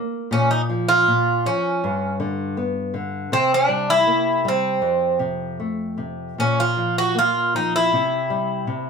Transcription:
Already playing: nylon-string guitar A#3
0.31 nylon-string guitar A#2, bouzouki C#4
0.51 bouzouki D#4
0.70 nylon-string guitar F3
0.88 bouzouki F4
1.07 nylon-string guitar A#2
1.46 nylon-string guitar F3, bouzouki C#4
1.84 nylon-string guitar G2
2.20 nylon-string guitar D3
2.57 nylon-string guitar B3
2.94 nylon-string guitar D3
3.32 nylon-string guitar C3, bouzouki C4
3.54 bouzouki D4
3.69 nylon-string guitar G3
3.90 bouzouki E4
4.07 nylon-string guitar A#3
4.45 nylon-string guitar G3, bouzouki C4
4.82 nylon-string guitar F2
5.19 nylon-string guitar C3
5.60 nylon-string guitar A3
5.98 nylon-string guitar C3
6.38 nylon-string guitar A#2, bouzouki C#4
6.60 bouzouki F4
6.77 nylon-string guitar F3
6.98 bouzouki F#4
7.15 nylon-string guitar A#3, bouzouki F4
7.55 nylon-string guitar F3, bouzouki D#4
7.76 bouzouki E4
7.93 nylon-string guitar C3
8.30 nylon-string guitar G3
8.67 nylon-string guitar C3

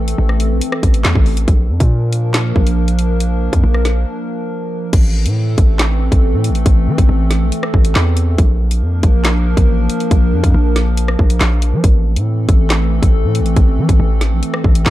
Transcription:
Already playing: 808-style bass A1, analog synth pad E3 A3 C4 A4
0.08 closed hi-hat
0.18 808-style bass A1
0.29 cross-stick
0.40 closed hi-hat
0.51 808-style bass A#1
0.61 closed hi-hat
0.72 cross-stick
0.83 808-style bass A1, kick, closed hi-hat
0.94 closed hi-hat
1.05 808-style bass E2, snare, clap
1.15 808-style bass A1, kick
1.26 open hi-hat
1.37 closed hi-hat
1.48 808-style bass A#1, analog synth pad F3 A#3 D4 A#4, kick, closed hi-hat
1.69 808-style bass F2
1.80 808-style bass A#2, kick, closed hi-hat
2.13 closed hi-hat
2.34 snare, clap, closed hi-hat
2.56 808-style bass A#1, kick
2.67 closed hi-hat
2.88 closed hi-hat
2.99 closed hi-hat
3.20 closed hi-hat
3.53 808-style bass F2, kick, closed hi-hat
3.64 808-style bass A#1
3.74 cross-stick
3.85 snare, closed hi-hat
4.93 808-style bass A1, analog synth pad E3 A3 C4 A4, kick, closed hi-hat, crash
5.26 808-style bass A2, closed hi-hat
5.58 808-style bass A1, kick, closed hi-hat
5.79 snare, clap, closed hi-hat
6.12 808-style bass A1, kick, closed hi-hat
6.34 808-style bass A2
6.44 closed hi-hat
6.50 808-style bass A1
6.55 closed hi-hat
6.66 808-style bass A1, kick, closed hi-hat
6.87 808-style bass E3
6.98 808-style bass A1, kick, closed hi-hat
7.09 808-style bass A1
7.31 snare, closed hi-hat
7.41 808-style bass A#1
7.52 closed hi-hat
7.63 cross-stick
7.74 808-style bass A1, kick
7.85 closed hi-hat
7.95 808-style bass E2, snare, clap
8.17 closed hi-hat
8.39 808-style bass A#1, analog synth pad F3 A#3 D4 A#4, kick, closed hi-hat
8.71 closed hi-hat
8.82 808-style bass F2
9.03 808-style bass A#1, kick, closed hi-hat
9.25 snare, clap, closed hi-hat
9.57 808-style bass A1, kick, closed hi-hat
9.90 closed hi-hat
10.00 closed hi-hat
10.11 808-style bass A#1, kick, closed hi-hat
10.33 808-style bass F2
10.44 808-style bass F2, kick, closed hi-hat
10.54 808-style bass A#1
10.76 snare, closed hi-hat
10.97 closed hi-hat
11.08 cross-stick
11.19 808-style bass A#1, kick
11.30 closed hi-hat
11.41 808-style bass A#1, snare, clap
11.62 closed hi-hat
11.73 808-style bass F3
11.84 808-style bass A1, analog synth pad E3 A3 C4 A4, kick, closed hi-hat
12.16 808-style bass A2, closed hi-hat
12.49 808-style bass A1, kick, closed hi-hat
12.70 snare, clap, closed hi-hat
13.03 808-style bass A1, kick, closed hi-hat
13.24 808-style bass A2
13.35 closed hi-hat
13.40 808-style bass A1
13.46 closed hi-hat
13.56 808-style bass A1, kick, closed hi-hat
13.78 808-style bass E3
13.89 808-style bass A1, kick, closed hi-hat
14.00 808-style bass A1
14.21 snare, closed hi-hat
14.32 808-style bass A#1
14.43 closed hi-hat
14.54 cross-stick
14.64 808-style bass A1, kick
14.75 closed hi-hat
14.86 808-style bass E2, snare, clap

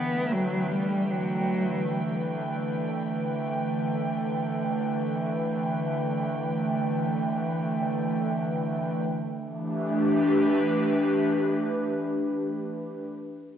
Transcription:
Already playing: analog synth pad D3 E3 A3 B4 G5, cello B3
0.32 cello F#3
0.72 cello G3
1.11 cello F#3
9.10 analog synth pad E3
9.20 analog synth pad A3
9.34 analog synth pad D4
9.46 analog synth pad G4
9.58 analog synth pad B4

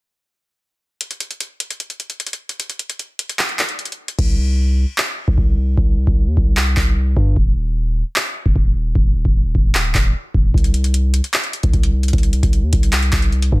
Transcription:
1.01 closed hi-hat
1.11 closed hi-hat
1.20 closed hi-hat
1.31 closed hi-hat
1.40 closed hi-hat
1.60 closed hi-hat
1.70 closed hi-hat
1.80 closed hi-hat
1.90 closed hi-hat
2.00 closed hi-hat
2.10 closed hi-hat
2.20 closed hi-hat
2.27 closed hi-hat
2.33 closed hi-hat
2.49 closed hi-hat
2.60 closed hi-hat
2.70 closed hi-hat
2.79 closed hi-hat
2.90 closed hi-hat
2.99 closed hi-hat
3.19 closed hi-hat
3.29 closed hi-hat
3.39 clap, closed hi-hat
3.49 closed hi-hat
3.59 clap, closed hi-hat
3.69 closed hi-hat
3.79 closed hi-hat
3.85 closed hi-hat
3.92 closed hi-hat
4.08 closed hi-hat
4.19 808-style bass C2, kick, crash
4.98 clap
5.28 808-style bass C2, kick
5.38 808-style bass C2, kick
5.77 808-style bass C2, kick
6.07 808-style bass C2, kick
6.27 808-style bass D#2
6.37 808-style bass C2, kick
6.57 clap
6.77 808-style bass C2, kick, clap
7.17 808-style bass G2, kick
7.36 808-style bass D#1, kick
8.16 clap
8.46 808-style bass D#1, kick
8.56 808-style bass D#1, kick
8.95 808-style bass D#1, kick
9.25 808-style bass D#1, kick
9.55 808-style bass D#1, kick
9.75 clap
9.85 808-style bass D1
9.95 808-style bass D#1, kick, clap
10.34 808-style bass D#1, kick
10.54 808-style bass C2, kick, closed hi-hat
10.64 closed hi-hat
10.74 closed hi-hat
10.84 closed hi-hat
10.94 closed hi-hat
11.14 closed hi-hat
11.24 closed hi-hat
11.34 clap, closed hi-hat
11.44 closed hi-hat
11.53 closed hi-hat
11.63 808-style bass C2, kick, closed hi-hat
11.73 808-style bass C2, kick, closed hi-hat
11.83 closed hi-hat
12.03 closed hi-hat
12.08 closed hi-hat
12.13 808-style bass C2, kick, closed hi-hat
12.18 closed hi-hat
12.23 closed hi-hat
12.33 closed hi-hat
12.43 808-style bass C2, kick, closed hi-hat
12.53 closed hi-hat
12.63 808-style bass D#2
12.73 808-style bass C2, kick, closed hi-hat
12.83 closed hi-hat
12.93 clap, closed hi-hat
13.03 closed hi-hat
13.12 808-style bass C2, kick, clap, closed hi-hat
13.22 closed hi-hat
13.32 closed hi-hat
13.42 closed hi-hat
13.52 808-style bass G2, kick

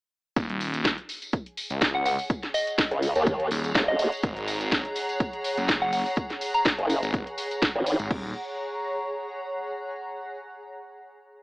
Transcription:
0.36 detuned saw bass D#1, ambient pad G#4, kick, closed hi-hat, tambourine
0.49 detuned saw bass D#1, closed hi-hat
0.60 open hi-hat, tambourine
0.73 closed hi-hat, tambourine
0.85 kick, snare, closed hi-hat, tambourine
0.98 ambient pad C#5, closed hi-hat
1.09 open hi-hat, tambourine
1.22 closed hi-hat, tambourine
1.27 ambient pad F#5
1.33 kick, closed hi-hat
1.46 closed hi-hat
1.57 open hi-hat, tambourine
1.70 detuned saw bass C#2, closed hi-hat, tambourine
1.81 kick, snare, closed hi-hat, tambourine
1.95 synth bell F#5
2.04 synth bell F#5, ambient pad A#5, open hi-hat, tambourine
2.19 open hi-hat, tambourine
2.30 kick, closed hi-hat, tambourine
2.43 snare, closed hi-hat
2.54 synth bell D#5, open hi-hat, tambourine
2.67 closed hi-hat, tambourine
2.78 kick, snare, closed hi-hat, tambourine
2.91 wobble bass C#2, closed hi-hat
3.02 open hi-hat, tambourine
3.15 wobble bass D#2, closed hi-hat, tambourine
3.27 kick, closed hi-hat, tambourine
3.40 closed hi-hat
3.51 detuned saw bass D#1, open hi-hat, tambourine
3.64 closed hi-hat, tambourine
3.75 wobble bass D#1, kick, snare, closed hi-hat, tambourine
3.88 synth bell D#5
3.99 synth bell D#5, open hi-hat, tambourine
4.12 closed hi-hat, tambourine
4.22 detuned saw bass G#1, kick, closed hi-hat, tambourine
4.37 detuned saw bass G#1, closed hi-hat
4.48 open hi-hat, tambourine
4.61 closed hi-hat, tambourine
4.71 kick, snare, closed hi-hat, tambourine
4.85 closed hi-hat
4.96 open hi-hat, tambourine
5.09 closed hi-hat, tambourine
5.20 kick, closed hi-hat, tambourine
5.33 closed hi-hat
5.44 open hi-hat, tambourine
5.57 detuned saw bass F#1, closed hi-hat, tambourine
5.68 kick, snare, closed hi-hat, tambourine
5.82 synth bell F#5
5.93 synth bell F#5, open hi-hat, tambourine
6.06 open hi-hat, tambourine
6.16 kick, closed hi-hat, tambourine
6.30 snare, closed hi-hat
6.41 open hi-hat, tambourine
6.54 synth bell A#5, closed hi-hat, tambourine
6.65 kick, snare, closed hi-hat, tambourine
6.79 wobble bass F#1, closed hi-hat
6.90 open hi-hat, tambourine
7.03 detuned saw bass G#1, closed hi-hat, tambourine
7.14 kick, closed hi-hat, tambourine
7.27 closed hi-hat
7.38 open hi-hat, tambourine
7.51 closed hi-hat, tambourine
7.62 kick, snare, closed hi-hat, tambourine
7.75 wobble bass G#1
7.86 open hi-hat, tambourine
7.99 detuned saw bass G#1, closed hi-hat, tambourine
8.11 detuned saw bass D#1, ambient pad G#4, kick, crash
8.18 ambient pad C#5
8.26 ambient pad F#5
8.32 ambient pad A#5

